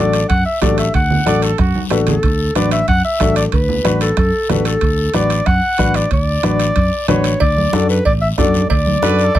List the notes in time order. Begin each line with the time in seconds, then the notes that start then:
Already playing: A1 D4 F#4 A4 D5
0.13 high timbale, short guiro
0.29 F#2 F#5, bombo low, high conga, high timbale, long guiro
0.46 E5
0.61 A1 D4 F#4 A4 D5, bombo low, bombo rim, high conga, high timbale, low timbale, short guiro
0.78 E5, high timbale, short guiro
0.94 D2 F#5, bombo low, high conga, high timbale, long guiro
1.11 low conga
1.26 A1 D4 F#4 A4 D5, bombo rim, high conga, high timbale, short guiro
1.42 A4, high timbale, short guiro
1.58 F#2 F#4, bombo low, bombo rim, high timbale, long guiro
1.75 high conga
1.90 A1 D4 F#4 A4 B4, bombo rim, high timbale, low timbale, short guiro
2.07 A4, low conga, high timbale, short guiro
2.23 D2, bombo low, high conga, high timbale, long guiro
2.55 A1 D4 F#4 B4 D5, bombo rim, high conga, high timbale, short guiro
2.71 E5, high timbale, short guiro
2.88 F#2 F#5, bombo low, high conga, high timbale, long guiro
3.04 E5
3.20 A1 D4 F#4 A4, bombo low, bombo rim, high conga, high timbale, short guiro
3.36 D5, high timbale, short guiro
3.52 D2 B4, bombo low, high conga, high timbale, long guiro
3.69 low conga
3.84 A1 D4 F#4 B4, bombo rim, high conga, high timbale, short guiro
4.01 A4, high timbale, short guiro
4.17 F#2 A4, bombo low, bombo rim, high conga, high timbale, long guiro
4.49 A1 D4 F#4 A4 B4, bombo rim, high conga, low conga, high timbale, low timbale, short guiro
4.65 A4, high timbale, short guiro
4.81 D2, bombo low, high timbale, long guiro
5.14 A1 D4 F#4 B4 D5, bombo rim, high conga, high timbale, short guiro
5.30 high timbale, short guiro
5.46 F#2 F#5, bombo low, bombo rim, high conga, high timbale, long guiro
5.78 A1 D4 F#4 B4, bombo low, bombo rim, high conga, high timbale, short guiro
5.94 D5, high timbale, short guiro
6.11 D2 D5, bombo low, high conga, high timbale, long guiro
6.43 A1 D4 F#4 B4, bombo rim, high conga, high timbale, short guiro
6.60 high timbale, short guiro
6.76 F#2, bombo low, high conga, high timbale, long guiro
7.08 A1 D4 F#4 B4 C#5, bombo rim, high conga, low conga, high timbale, short guiro
7.24 high timbale, short guiro
7.40 D2 D5, bombo low, cowbell, high conga, long guiro
7.57 high conga
7.73 F#2 D4 F#4 A4, bombo rim, high conga, short guiro
7.89 B4, short guiro
8.05 A1 D5, bombo low, cowbell, high conga, long guiro
8.22 E5
8.38 F#2 D4 F#4 A4 D5, bombo low, bombo rim, high conga, low timbale, short guiro
8.54 high conga, short guiro
8.70 D2 D5, bombo low, cowbell, high conga, long guiro
8.86 high conga
9.03 F#2 D4 F#4 A4 B4, bombo rim, high conga, short guiro
9.19 short guiro
9.24 A4
9.35 A1 A4, bombo low, bombo rim, cowbell, high conga, long guiro